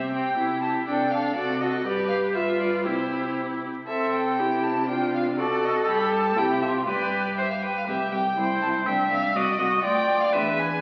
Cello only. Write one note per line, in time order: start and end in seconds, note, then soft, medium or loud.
0.00 0.32 C3 soft
0.37 0.81 C3 soft
0.88 1.31 C3 soft
1.37 1.80 C3 soft
1.85 2.31 G2 medium
2.35 2.87 G2 medium
2.86 3.69 C3 soft
3.88 5.84 C3 soft
5.89 6.39 G2 medium
6.38 6.90 C3 medium
6.88 7.68 G2 soft
7.88 7.96 C2 soft
8.13 8.21 C2 soft
8.38 8.46 C2 soft
8.63 8.71 C2 soft
8.87 8.95 C2 medium
9.11 9.19 C2 soft
9.36 9.44 C2 medium
9.60 9.68 C2 medium
9.84 10.35 D2 medium
10.34 10.81 E2 medium